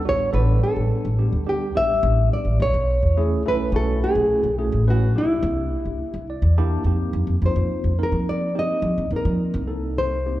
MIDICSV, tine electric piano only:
0, 0, Header, 1, 2, 480
1, 0, Start_track
1, 0, Tempo, 567430
1, 48, Time_signature, 6, 3, 24, 8
1, 8798, End_track
2, 0, Start_track
2, 0, Title_t, "Tine electric piano"
2, 0, Program_c, 0, 4
2, 42, Note_on_c, 0, 55, 73
2, 44, Note_on_c, 0, 66, 75
2, 46, Note_on_c, 0, 59, 72
2, 47, Note_on_c, 0, 62, 60
2, 252, Note_off_c, 0, 55, 0
2, 253, Note_off_c, 0, 66, 0
2, 254, Note_off_c, 0, 59, 0
2, 254, Note_off_c, 0, 62, 0
2, 275, Note_on_c, 0, 69, 91
2, 276, Note_on_c, 0, 62, 79
2, 277, Note_on_c, 0, 59, 80
2, 281, Note_on_c, 0, 55, 84
2, 902, Note_off_c, 0, 69, 0
2, 903, Note_off_c, 0, 59, 0
2, 903, Note_off_c, 0, 62, 0
2, 905, Note_off_c, 0, 55, 0
2, 1003, Note_on_c, 0, 62, 70
2, 1004, Note_on_c, 0, 67, 75
2, 1005, Note_on_c, 0, 59, 67
2, 1008, Note_on_c, 0, 55, 68
2, 1212, Note_off_c, 0, 62, 0
2, 1213, Note_off_c, 0, 59, 0
2, 1213, Note_off_c, 0, 67, 0
2, 1214, Note_off_c, 0, 55, 0
2, 1239, Note_on_c, 0, 55, 73
2, 1241, Note_on_c, 0, 67, 77
2, 1242, Note_on_c, 0, 62, 67
2, 1243, Note_on_c, 0, 59, 68
2, 1450, Note_off_c, 0, 55, 0
2, 1451, Note_off_c, 0, 67, 0
2, 1452, Note_off_c, 0, 59, 0
2, 1452, Note_off_c, 0, 62, 0
2, 1479, Note_on_c, 0, 55, 74
2, 1482, Note_on_c, 0, 59, 73
2, 1483, Note_on_c, 0, 67, 81
2, 1484, Note_on_c, 0, 62, 62
2, 2203, Note_off_c, 0, 55, 0
2, 2204, Note_off_c, 0, 59, 0
2, 2205, Note_off_c, 0, 62, 0
2, 2205, Note_off_c, 0, 67, 0
2, 2683, Note_on_c, 0, 57, 86
2, 2684, Note_on_c, 0, 61, 80
2, 2684, Note_on_c, 0, 64, 87
2, 2686, Note_on_c, 0, 68, 86
2, 2892, Note_off_c, 0, 57, 0
2, 2892, Note_off_c, 0, 61, 0
2, 2892, Note_off_c, 0, 64, 0
2, 2893, Note_off_c, 0, 68, 0
2, 2923, Note_on_c, 0, 57, 80
2, 2923, Note_on_c, 0, 61, 77
2, 2925, Note_on_c, 0, 64, 78
2, 2928, Note_on_c, 0, 69, 80
2, 3131, Note_off_c, 0, 57, 0
2, 3131, Note_off_c, 0, 61, 0
2, 3133, Note_off_c, 0, 64, 0
2, 3134, Note_off_c, 0, 69, 0
2, 3161, Note_on_c, 0, 64, 79
2, 3162, Note_on_c, 0, 66, 90
2, 3163, Note_on_c, 0, 57, 89
2, 3163, Note_on_c, 0, 61, 83
2, 3784, Note_off_c, 0, 64, 0
2, 3785, Note_off_c, 0, 57, 0
2, 3785, Note_off_c, 0, 61, 0
2, 3785, Note_off_c, 0, 66, 0
2, 3876, Note_on_c, 0, 57, 80
2, 3877, Note_on_c, 0, 61, 67
2, 3877, Note_on_c, 0, 64, 60
2, 3880, Note_on_c, 0, 68, 86
2, 4088, Note_off_c, 0, 57, 0
2, 4088, Note_off_c, 0, 61, 0
2, 4088, Note_off_c, 0, 64, 0
2, 4090, Note_off_c, 0, 68, 0
2, 4125, Note_on_c, 0, 64, 71
2, 4126, Note_on_c, 0, 57, 78
2, 4126, Note_on_c, 0, 71, 89
2, 4129, Note_on_c, 0, 61, 76
2, 4332, Note_off_c, 0, 64, 0
2, 4333, Note_off_c, 0, 57, 0
2, 4333, Note_off_c, 0, 71, 0
2, 4334, Note_off_c, 0, 61, 0
2, 4363, Note_on_c, 0, 67, 80
2, 4364, Note_on_c, 0, 58, 78
2, 4366, Note_on_c, 0, 62, 60
2, 4367, Note_on_c, 0, 64, 68
2, 5191, Note_off_c, 0, 67, 0
2, 5192, Note_off_c, 0, 58, 0
2, 5193, Note_off_c, 0, 62, 0
2, 5194, Note_off_c, 0, 64, 0
2, 5328, Note_on_c, 0, 74, 67
2, 5550, Note_off_c, 0, 74, 0
2, 5565, Note_on_c, 0, 81, 71
2, 5567, Note_on_c, 0, 67, 104
2, 5568, Note_on_c, 0, 64, 89
2, 5569, Note_on_c, 0, 58, 99
2, 5570, Note_on_c, 0, 62, 90
2, 5773, Note_off_c, 0, 64, 0
2, 5773, Note_off_c, 0, 67, 0
2, 5774, Note_off_c, 0, 58, 0
2, 5774, Note_off_c, 0, 62, 0
2, 5788, Note_off_c, 0, 81, 0
2, 5799, Note_on_c, 0, 63, 66
2, 5802, Note_on_c, 0, 58, 70
2, 5806, Note_on_c, 0, 60, 67
2, 5808, Note_on_c, 0, 67, 84
2, 6216, Note_off_c, 0, 63, 0
2, 6217, Note_off_c, 0, 58, 0
2, 6219, Note_off_c, 0, 60, 0
2, 6220, Note_off_c, 0, 67, 0
2, 6282, Note_on_c, 0, 58, 77
2, 6283, Note_on_c, 0, 60, 59
2, 6285, Note_on_c, 0, 63, 61
2, 6287, Note_on_c, 0, 65, 71
2, 6697, Note_off_c, 0, 58, 0
2, 6698, Note_off_c, 0, 60, 0
2, 6699, Note_off_c, 0, 63, 0
2, 6699, Note_off_c, 0, 65, 0
2, 6755, Note_on_c, 0, 63, 68
2, 6757, Note_on_c, 0, 58, 64
2, 6758, Note_on_c, 0, 70, 79
2, 6761, Note_on_c, 0, 60, 66
2, 7174, Note_off_c, 0, 58, 0
2, 7174, Note_off_c, 0, 63, 0
2, 7175, Note_off_c, 0, 70, 0
2, 7176, Note_off_c, 0, 60, 0
2, 7232, Note_on_c, 0, 60, 68
2, 7234, Note_on_c, 0, 63, 66
2, 7234, Note_on_c, 0, 67, 80
2, 7235, Note_on_c, 0, 58, 68
2, 7652, Note_off_c, 0, 60, 0
2, 7653, Note_off_c, 0, 58, 0
2, 7653, Note_off_c, 0, 63, 0
2, 7653, Note_off_c, 0, 67, 0
2, 7714, Note_on_c, 0, 58, 67
2, 7715, Note_on_c, 0, 60, 54
2, 7715, Note_on_c, 0, 63, 63
2, 7721, Note_on_c, 0, 70, 64
2, 8133, Note_off_c, 0, 58, 0
2, 8133, Note_off_c, 0, 63, 0
2, 8134, Note_off_c, 0, 60, 0
2, 8136, Note_off_c, 0, 70, 0
2, 8184, Note_on_c, 0, 69, 73
2, 8185, Note_on_c, 0, 58, 62
2, 8186, Note_on_c, 0, 60, 57
2, 8187, Note_on_c, 0, 63, 57
2, 8608, Note_off_c, 0, 58, 0
2, 8608, Note_off_c, 0, 69, 0
2, 8609, Note_off_c, 0, 60, 0
2, 8610, Note_off_c, 0, 63, 0
2, 8678, Note_on_c, 0, 63, 59
2, 8680, Note_on_c, 0, 58, 67
2, 8681, Note_on_c, 0, 67, 68
2, 8682, Note_on_c, 0, 60, 53
2, 8798, Note_off_c, 0, 58, 0
2, 8798, Note_off_c, 0, 60, 0
2, 8798, Note_off_c, 0, 63, 0
2, 8798, Note_off_c, 0, 67, 0
2, 8798, End_track
0, 0, End_of_file